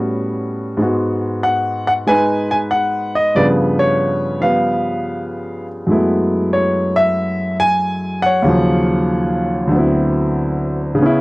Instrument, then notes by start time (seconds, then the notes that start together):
grand piano
Already playing: A2 G3 B3 C#4 F#4
0.77 G#2 G#3 B3
0.82 F#4
1.43 F#5
1.87 F#5
2.07 G#3 D#4 B4 G#5
2.51 G#5
2.71 F#5
3.15 D#5
3.35 G2 C#3 F3 B3 B4 D5
3.79 C#5
4.41 F3 G3 B3 B4 F5
5.87 F#2 F#3 G#3 A3 B3
5.91 E4
6.53 C#5
6.96 E5
7.60 G#5
8.22 C#5 F#5
8.42 D#2 C#3 F#3
8.47 F3
9.67 D2 D3
9.72 F#3 B3
9.76 C4 E4
10.95 C#3 B3
11.02 C#4 E4